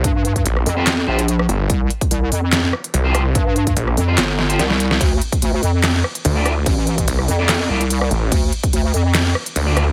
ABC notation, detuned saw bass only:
X:1
M:4/4
L:1/8
Q:"Swing 16ths" 1/4=145
K:Dm
V:1 name="Detuned saw bass" clef=bass
z2 B,,, z4 G,,, | z6 C,,2 | z2 B,,, z4 z | z6 D,,2 |
z2 C,, z4 A,,, | z6 D,,2 |]